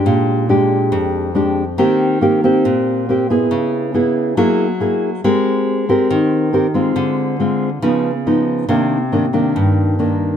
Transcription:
\new Staff \with { instrumentName = "Nylon-string guitar" } { \time 4/4 \key bes \major \tempo 4 = 139 << { <aes d' g'>4 <aes d' g'>2 <aes d' g'>8 r8 | <bes c' g'>4 <bes c' g'>8 <bes c' g'>4. <bes c' g'>8 <b e' aes'>8~ | <b e' aes'>4 <b e' gis'>4 <ais e' gis'>8 r8 <ais e' gis'>8 r8 | <c' g' bes'>4. <c' g' bes'>4. <c' g' bes'>8 <aes c' f'>8~ |
<aes c' f'>4 <aes c' f'>8 r8 <eis b dis'>8 r8 <eis b dis'>4 | <ees bes d'>8 r8 <ees bes d'>8 <ees bes d'>4. <ees bes d'>4 | } \\ { bes,2 f,2 | ees2 bes,2 | cis2 fis2 | aes2 ees2 |
d2 cis2 | c2 g,2 | } >> }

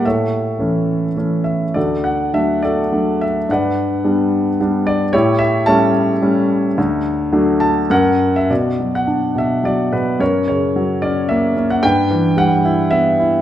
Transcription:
<<
  \new Staff \with { instrumentName = "Grand piano" } { \time 3/4 \key d \major \tempo 4 = 108 << { e''2 r8 e''8 | d''8 fis''8 e''8 d''4 e''8 | fis''2 r8 d''8 | cis''8 e''8 a''2~ |
a''4. a''8 fis''8. e''16 | \key b \minor d''8. fis''8. e''8 d''8 b'8 | cis''8 cis''4 d''8 e''8. fis''16 | g''4 fis''4 e''4 | } \\ { <a' cis''>2 r4 | <fis' a'>4. <fis' a'>4. | <b' d''>2 r4 | <e' g'>4 <cis'' e''>2~ |
<cis'' e''>2 ais'4 | fis'4. r4. | ais'4. r4. | b'4. r4. | } >> }
  \new Staff \with { instrumentName = "Grand piano" } { \clef bass \time 3/4 \key d \major a,4 <e a cis'>4 <e a cis'>4 | d,4 <fis a d'>4 <fis a d'>4 | g,4 <g b d'>4 <g b d'>4 | a,4 <g a cis'>4 <g a cis'>4 |
d,4 <fis a d'>4 fis,4 | \key b \minor b,8 fis8 d'8 b,8 fis8 b,8 | fis,8 cis8 fis8 cis'8 ais8 cis'8 | g,8 e8 g8 e'8 b8 e'8 | }
>>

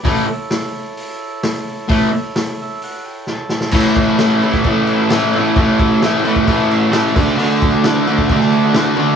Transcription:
<<
  \new Staff \with { instrumentName = "Transistor combo organ" } { \time 4/4 \key a \major \tempo 4 = 131 << { r1 | r4. e''8 fis''8 g''8 a''4 | r1 | r1 |
r1 | } \\ { <e' a' cis''>1~ | <e' a' cis''>1 | <e' a' cis''>1~ | <e' a' cis''>2.~ <e' a' cis''>8 <fis' a' d''>8~ |
<fis' a' d''>1 | } >> }
  \new Staff \with { instrumentName = "Distorted electric guitar" } { \clef bass \time 4/4 \key a \major <a, e a>8 r2. r8 | <a, e a>8 r2. r8 | <a, e a>4 <a, e a>8 <a, e a>8 <a, e a>4 <a, e a>8 <a, e a>8 | <a, e a>4 <a, e a>8 <a, e a>8 <a, e a>4 <a, e a>8 <d a d'>8 |
<d a d'>4 <d a d'>8 <d a d'>8 <d a d'>4 <d a d'>8 <d a d'>8 | }
  \new DrumStaff \with { instrumentName = "Drums" } \drummode { \time 4/4 <hho bd>4 <hho sn>4 hho4 <hho sn>4 | <hho bd>4 <hho sn>4 hho4 sn8 sn16 sn16 | <cymc bd>8 <cymc bd>8 <cymc sn>8 cymc16 <bd sn>16 <cymc bd>8 cymc8 <cymc sn>8 cymc8 | <cymc bd>8 <cymc bd>8 <cymc sn>8 cymc16 bd16 <cymc bd>8 cymc8 <cymc sn>8 <cymc bd>8 |
cymc8 <cymc bd>8 <cymc sn>8 cymc16 bd16 <cymc bd>16 sn16 cymc8 <cymc sn>8 cymc8 | }
>>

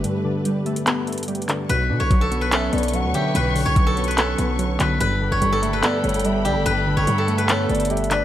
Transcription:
<<
  \new Staff \with { instrumentName = "Soft synth lead" } { \time 4/4 \key b \minor \tempo 4 = 145 r1 | r2 e''8 d''8 fis''8 e''8 | r1 | r2 d''8 cis''8 e''8 d''8 |
r2 cis''8 d''8 e''8 d''8 | }
  \new Staff \with { instrumentName = "Guzheng" } { \time 4/4 \key b \minor r1 | b'8. cis''8 a'8 b'16 a'4. g'8 | b'8. cis''8 a'8 b'16 a'4. b'8 | b'8. cis''8 a'8 b'16 a'4. g'8 |
b'8. cis''8 a'8 b'16 a'4. b'8 | }
  \new Staff \with { instrumentName = "String section" } { \time 4/4 \key b \minor <a g' b'>1 | <b' cis'' cis'''>1~ | <b' cis'' cis'''>1 | <a' g'' b''>1~ |
<a' g'' b''>1 | }
  \new Staff \with { instrumentName = "Synth keys" } { \clef bass \time 4/4 \key b \minor <g, d g a b>8 d8 g8 a8 b8 a8 g8 d8 | b,8 d8 fis8 b8 cis'8 b8 fis8 d8 | b,8 d8 fis8 b8 cis'8 b8 fis8 d8 | g,8 d8 g8 a8 b8 a8 g8 d8 |
g,8 d8 g8 a8 b8 a8 g8 d8 | }
  \new Staff \with { instrumentName = "808-style bass" } { \clef bass \time 4/4 \key b \minor r1 | b,,8 b,16 b,,4.~ b,,16 b,,8. d,16 r8 | b,,8. b,,4.~ b,,16 b,,4 b,,8 | g,,8. g,,16 g,,8 fis,,8 r8 g,,4 b,,16 g,,16 |
g,,8. g,,16 g,4. g,,4. | }
  \new DrumStaff \with { instrumentName = "Drums" } \drummode { \time 4/4 hh4 hh8 hh16 hh16 <hc hh>8 hh32 hh32 hh32 hh32 \tuplet 3/2 { hh16 hh16 hh16 <hc hh>16 r16 r16 } | hh4 <hh bd>8 hh8 <hc hh>8 hh32 hh32 hh32 hh32 hh8 hh8 | hh8 hho8 \tuplet 3/2 { <hh bd>16 r16 r16 hh16 hh16 hh16 } <hc hh>8 hh8 hh8 <hc hh>8 | hh4 hh8 hh8 <hc hh>8 hh32 hh32 hh32 hh32 hh8 hh8 |
hh4 hh8 hh16 hh16 <hc hh>8 hh32 hh32 hh32 hh32 \tuplet 3/2 { hh16 hh16 hh16 <hc hh>16 r16 r16 } | }
>>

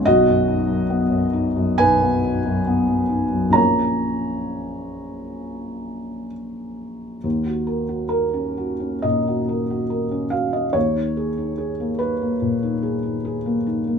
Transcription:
\new Staff \with { instrumentName = "Felt piano" } { \time 4/4 \key ees \minor \tempo 4 = 69 << { <fis' dis''>2 <b' aes''>2 | <des'' bes''>2. r4 | r4 bes'4 ees''4. f''16 ees''16 | des''4. ces''2 r8 | } \\ { b,,16 fis,16 dis'16 fis,16 b16 fis,16 dis'16 fis,16 b,,16 b16 dis'16 fis,16 b16 fis,16 dis'16 fis,16 | <bes,, des' f' bes'>1 | ees,16 ges'16 bes'16 ges'8 des'16 ges'16 des'16 bes,16 ges'16 bes'16 ges'16 bes'16 des'16 ges'16 des'16 | ees,16 ees'16 aes'16 ees'16 aes'16 bes16 ees'16 bes16 bes,16 ees'16 aes'16 ees'16 aes'16 bes16 ees'16 bes16 | } >> }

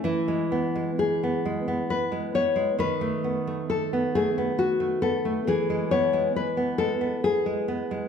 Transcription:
<<
  \new Staff \with { instrumentName = "Nylon-string guitar" } { \time 3/4 \key e \major \tempo 4 = 67 e'4 gis'4 b'8 cis''8 | b'4 a'8 gis'8 fis'8 a'8 | gis'8 cis''8 b'8 a'8 gis'4 | }
  \new Staff \with { instrumentName = "Nylon-string guitar" } { \time 3/4 \key e \major e16 gis16 b16 gis8 b16 gis16 b8 gis16 b16 gis16 | dis16 a16 b16 a8 b16 a16 b8 a16 b16 a16 | e16 gis16 b16 gis8 b16 gis16 b8 gis16 b16 gis16 | }
>>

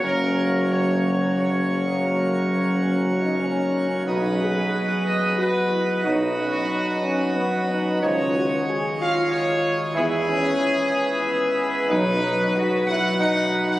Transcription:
<<
  \new Staff \with { instrumentName = "Trumpet section" } { \time 3/4 \key b \major \tempo 4 = 92 ais'4 cis''4 cis''8. gis'16 | ais'2~ ais'8 r8 | b'4. dis''8 b'4 | fis'2. |
cis''4. eis''8 cis''4 | gis'2. | b'4. fis''8 fis''8. fis''16 | }
  \new Staff \with { instrumentName = "French horn section" } { \time 3/4 \key b \major <ais cis'>2.~ | <ais cis'>4 cis'8. dis'16 cis'8. ais16 | fis'8 gis'4. fis'8 e'8 | dis'8 cis'8 dis'8 cis'8 b8 dis'8 |
eis'8 fis'8 gis'8 eis'4. | e'8 cis'4. b4 | dis'4 fis'8 e'8 dis'4 | }
  \new Staff \with { instrumentName = "Pipe organ" } { \time 3/4 \key b \major << { cis''2.~ | cis''2. | b'2.~ | b'2. |
cis''2. | b'2.~ | b'2. | } \\ { cis'2.~ | cis'2. | dis''2.~ | dis''2.~ |
dis''2. | e'2. | fis'2. | } >> }
  \new Staff \with { instrumentName = "Pipe organ" } { \clef bass \time 3/4 \key b \major << { ais2.~ | ais2. | b2.~ | b2. |
gis2.~ | gis2. | fis2. | } \\ { fis2.~ | fis2. | fis2.~ | fis2. |
dis2. | e2. | b,2. | } >> }
  \new Staff \with { instrumentName = "Trombone section" } { \clef bass \time 3/4 \key b \major <cis fis>2.~ | <cis fis>2~ <cis fis>8 r8 | <fis dis'>8 r2 r8 | <fis dis'>8 r2 r8 |
<eis dis'>8 r2 r8 | <e e'>8 r2 r8 | <fis dis'>8 r2 r8 | }
  \new Staff \with { instrumentName = "Tuba" } { \clef bass \time 3/4 \key b \major fis,,2.~ | fis,,2~ fis,,8 r8 | b,,4 r2 | b,,4 r2 |
cis,4 r2 | e,4 r2 | b,,4 r2 | }
>>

